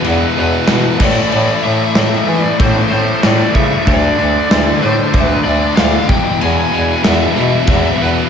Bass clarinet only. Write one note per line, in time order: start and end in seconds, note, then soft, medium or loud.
0.04 0.26 E2 loud
0.36 0.58 E2 medium
0.67 0.90 B2 medium
1.00 1.22 A2 medium
1.31 1.53 A2 loud
1.63 1.85 A2 medium
1.94 2.17 A2 medium
2.27 2.49 E3 medium
2.60 2.82 A2 loud
2.90 3.13 A2 medium
3.22 3.45 A2 loud
3.54 3.77 C#3 medium
3.87 4.09 D2 loud
4.18 4.40 D2 medium
4.50 4.72 D2 medium
4.82 5.04 A2 medium
5.14 5.36 D2 loud
5.45 5.67 D2 medium
5.76 5.99 D2 loud
6.40 6.62 E2 loud
6.72 6.94 E2 medium
7.04 7.26 E2 medium
7.37 7.58 B2 medium
7.67 7.89 E2 loud
7.99 8.21 E2 medium